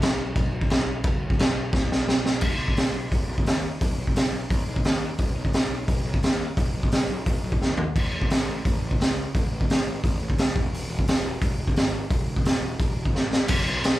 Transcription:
0.01 0.33 B1 medium
0.01 snare loud
0.01 crash medium
0.36 0.51 B1 medium
0.36 kick loud
0.36 crash medium
0.52 0.68 B1 medium
0.61 kick medium
0.70 1.02 B1 loud
0.70 snare loud
0.70 crash medium
1.04 1.36 B1 loud
1.04 kick loud
1.04 crash medium
1.30 kick medium
1.38 1.71 B1 medium
1.38 snare loud
1.38 crash medium
1.73 1.88 B1 medium
1.73 kick loud
1.73 snare medium
1.89 2.06 B1 medium
1.89 snare medium
2.06 2.23 B1 medium
2.06 snare loud
2.24 2.42 B1 medium
2.24 snare medium
2.41 2.55 B1 loud
2.41 kick loud
2.41 crash loud
2.58 2.71 B1 medium
2.68 kick medium
2.76 2.89 B1 medium
2.76 snare loud
2.76 open hi-hat medium
2.93 3.06 B1 medium
3.11 3.24 B1 medium
3.11 kick loud
3.11 open hi-hat medium
3.27 3.40 B1 medium
3.38 kick medium
3.44 3.70 D#2 medium
3.44 snare loud
3.44 open hi-hat medium
3.81 3.93 B1 loud
3.81 kick loud
3.81 open hi-hat medium
3.98 4.11 B1 medium
4.07 kick medium
4.15 4.27 B1 medium
4.15 snare loud
4.15 open hi-hat medium
4.31 4.44 B1 medium
4.50 4.62 B1 medium
4.50 kick loud
4.50 open hi-hat medium
4.67 4.79 B1 medium
4.76 kick medium
4.84 5.09 D#2 medium
4.84 snare loud
4.84 open hi-hat medium
5.18 5.31 B1 medium
5.18 kick loud
5.18 open hi-hat medium
5.35 5.48 B1 medium
5.45 kick medium
5.53 5.66 B1 medium
5.53 snare loud
5.53 open hi-hat medium
5.71 5.83 B1 medium
5.88 6.00 B1 medium
5.88 kick loud
5.88 open hi-hat medium
6.05 6.17 B1 medium
6.14 kick medium
6.23 6.47 D#2 medium
6.23 snare loud
6.23 open hi-hat medium
6.57 6.69 B1 loud
6.57 kick loud
6.57 open hi-hat medium
6.74 6.87 B1 medium
6.83 kick medium
6.91 7.04 B1 medium
6.91 snare loud
6.91 open hi-hat medium
7.10 7.22 B1 medium
7.26 7.39 B1 medium
7.26 kick loud
7.26 open hi-hat medium
7.44 7.56 B1 medium
7.52 kick medium
7.61 7.86 D#2 medium
7.61 snare medium
7.77 floor tom medium
7.96 8.08 A1 medium
7.96 kick loud
7.96 crash loud
8.13 8.25 A1 medium
8.22 kick medium
8.30 8.43 A1 medium
8.30 snare loud
8.30 open hi-hat medium
8.47 8.60 A1 medium
8.65 8.77 A1 medium
8.65 kick loud
8.65 open hi-hat medium
8.82 8.94 A1 medium
8.91 kick medium
9.00 9.24 C#2 medium
9.00 snare loud
9.00 open hi-hat medium
9.35 9.47 A1 medium
9.35 kick loud
9.35 open hi-hat medium
9.52 9.64 A1 medium
9.61 kick medium
9.68 9.81 A1 medium
9.68 snare loud
9.68 open hi-hat medium
9.86 9.98 A1 medium
10.04 10.16 A1 medium
10.04 kick loud
10.04 open hi-hat medium
10.20 10.33 A1 medium
10.30 kick medium
10.38 10.50 C#2 loud
10.38 snare loud
10.38 open hi-hat medium
10.55 10.68 E1 medium
10.55 kick loud
10.71 10.84 E1 loud
10.71 open hi-hat medium
10.88 11.01 E1 medium
10.99 kick medium
11.06 11.19 E1 medium
11.06 snare loud
11.06 open hi-hat medium
11.23 11.36 E1 medium
11.41 11.54 E1 medium
11.41 kick loud
11.41 open hi-hat medium
11.59 11.71 E1 medium
11.68 kick medium
11.76 12.01 G#1 medium
11.76 snare loud
11.76 open hi-hat medium
12.10 12.23 E1 loud
12.10 kick loud
12.10 open hi-hat medium
12.26 12.39 E1 medium
12.36 kick medium
12.43 12.56 E1 medium
12.43 snare loud
12.43 open hi-hat medium
12.61 12.74 E1 medium
12.79 12.92 E1 medium
12.79 kick loud
12.79 open hi-hat medium
12.95 13.08 E1 medium
13.05 kick medium
13.12 13.38 A1 medium
13.12 snare medium
13.33 snare medium
13.48 13.62 B1 loud
13.48 kick loud
13.48 crash loud
13.48 crash medium
13.65 13.78 B1 medium
13.65 crash medium
13.81 13.95 B1 medium
13.81 snare loud
13.81 crash medium

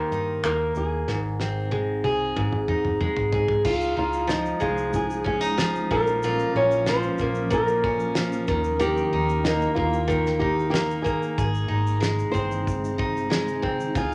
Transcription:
0.00 1.71 D#3 medium
0.00 0.43 A#3 medium
0.00 0.77 G4 medium
0.00 0.45 C5 loud
0.11 0.38 G2 medium
0.11 2.68 D#4 medium
0.11 shaker soft
0.44 0.70 D#2 medium
0.44 1.15 A#3 medium
0.44 0.77 A#4 medium
0.44 finger snap loud
0.44 shaker medium
0.75 1.02 D#2 medium
0.75 2.36 G#4 medium
0.75 shaker medium
1.08 2.00 G#1 medium
1.08 2.35 G#2 medium
1.08 snare medium
1.40 3.72 C4 medium
1.40 snare medium
1.71 3.00 G#3 medium
1.71 high tom medium
2.04 2.31 C2 medium
2.04 3.33 G#4 medium
2.04 high tom medium
2.36 2.50 G#1 medium
2.36 3.72 G#2 medium
2.36 3.30 G4 medium
2.36 kick medium
2.36 mid tom medium
2.53 2.66 G#1 medium
2.53 mid tom medium
2.68 3.96 D#4 medium
2.68 mid tom medium
2.85 2.98 G1 medium
2.85 mid tom medium
3.01 4.27 G#3 medium
3.01 muted fingered electric bass stroke soft
3.01 mid tom medium
3.17 3.30 G#1 medium
3.17 floor tom medium
3.33 3.60 G#2 loud
3.33 3.64 G#4 medium
3.33 floor tom loud
3.48 floor tom medium
3.65 3.92 C#2 loud
3.65 8.44 F3 medium
3.65 5.88 G#3 medium
3.65 8.44 C#4 medium
3.65 5.89 D#4 medium
3.65 6.24 F4 medium
3.65 3.98 F4 medium
3.65 kick loud
3.65 crash medium
3.81 shaker soft
3.97 4.50 C#2 loud
3.97 5.24 D#4 medium
3.97 4.31 F4 medium
4.13 shaker medium
4.27 5.57 F3 medium
4.27 4.63 D#4 medium
4.27 snare medium
4.27 shaker medium
4.45 shaker soft
4.60 5.87 C2 medium
4.60 5.96 G#3 medium
4.60 4.92 F4 medium
4.60 kick medium
4.60 shaker soft
4.78 shaker medium
4.93 5.26 G#4 medium
4.93 kick medium
4.93 shaker medium
5.10 shaker medium
5.24 5.41 C#4 medium
5.24 5.91 G#4 medium
5.24 kick loud
5.41 5.96 D#4 soft
5.41 shaker soft
5.57 6.87 F3 medium
5.57 snare loud
5.57 shaker medium
5.75 shaker medium
5.90 6.43 A#1 loud
5.90 6.23 A#2 medium
5.90 11.33 A#3 medium
5.90 8.45 F4 medium
5.90 6.56 A#4 loud
5.90 kick loud
6.07 shaker medium
6.23 7.49 A#2 medium
6.23 8.55 F4 medium
6.23 shaker medium
6.39 shaker medium
6.55 7.08 A#1 medium
6.55 7.83 C#4 medium
6.55 6.89 C#5 loud
6.71 shaker medium
6.86 8.15 F3 medium
6.86 7.48 C5 loud
6.86 snare loud
6.86 shaker medium
7.03 shaker soft
7.18 8.44 A#1 loud
7.18 9.45 A#3 medium
7.18 kick medium
7.18 shaker medium
7.35 shaker soft
7.50 8.54 A#2 medium
7.50 8.13 A#4 medium
7.50 kick medium
7.50 shaker medium
7.68 shaker medium
7.84 8.55 C#4 medium
7.84 kick loud
8.00 shaker soft
8.15 8.48 F3 medium
8.15 snare loud
8.15 shaker medium
8.32 shaker medium
8.47 9.01 D#2 loud
8.47 8.79 D#3 medium
8.47 13.91 D#3 medium
8.47 11.35 G5 medium
8.47 kick loud
8.47 shaker medium
8.64 shaker medium
8.79 10.07 D#3 medium
8.79 11.37 G4 medium
8.79 9.47 G4 loud
8.79 shaker medium
8.97 shaker soft
9.13 9.65 D#2 loud
9.13 10.40 D#4 medium
9.29 shaker medium
9.44 9.75 A#3 medium
9.44 9.74 D#4 medium
9.44 snare medium
9.44 shaker medium
9.62 shaker soft
9.75 11.02 D#2 medium
9.75 10.70 A#3 medium
9.75 10.42 F4 medium
9.75 kick medium
9.93 shaker soft
10.08 12.00 D#3 medium
10.08 kick medium
10.08 shaker medium
10.26 snare soft
10.26 shaker medium
10.39 11.68 D#4 medium
10.39 10.69 G4 medium
10.39 kick loud
10.59 shaker soft
10.70 11.03 A#3 medium
10.70 10.79 G4 loud
10.70 snare loud
10.70 shaker medium
10.91 shaker medium
11.02 11.43 A#3 medium
11.02 12.29 G#4 medium
11.02 kick loud
11.02 shaker medium
11.22 shaker medium
11.37 11.64 G#1 medium
11.37 13.92 C3 medium
11.37 13.92 G#3 medium
11.37 14.14 D#4 medium
11.37 13.95 G#4 medium
11.37 kick loud
11.37 shaker medium
11.55 shaker soft
11.68 12.23 G#1 loud
11.68 12.98 D#4 medium
11.87 shaker medium
12.00 13.30 G#3 medium
12.00 snare medium
12.00 shaker medium
12.19 shaker soft
12.32 13.59 G1 medium
12.32 13.61 C4 medium
12.32 13.58 C5 loud
12.32 kick medium
12.32 shaker soft
12.51 shaker soft
12.67 kick medium
12.67 shaker medium
12.84 shaker medium
12.98 14.14 D#4 medium
12.98 kick loud
13.17 shaker soft
13.30 14.14 G#3 medium
13.30 snare loud
13.30 shaker medium
13.48 shaker medium
13.62 14.01 C4 medium
13.62 kick medium
13.80 shaker medium
13.95 14.14 C#2 loud
13.95 14.14 F3 medium
13.95 14.14 G#3 medium
13.95 14.14 C#4 medium
13.95 14.14 F4 medium
13.95 14.14 G#4 loud
13.95 kick loud
13.95 shaker medium

